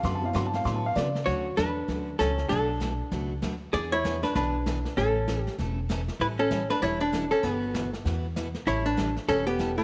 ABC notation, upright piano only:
X:1
M:4/4
L:1/8
Q:"Swing" 1/4=195
K:D
V:1 name="Upright piano"
(3=c' a =f (3c' a f (3c' a f d2 | z8 | z8 | z8 |
z8 | z8 | z8 | z8 |]
V:2 name="Upright piano"
z [F,B,E]3 [F,B,E] z3 | z8 | z8 | z8 |
z8 | z8 | z8 | z8 |]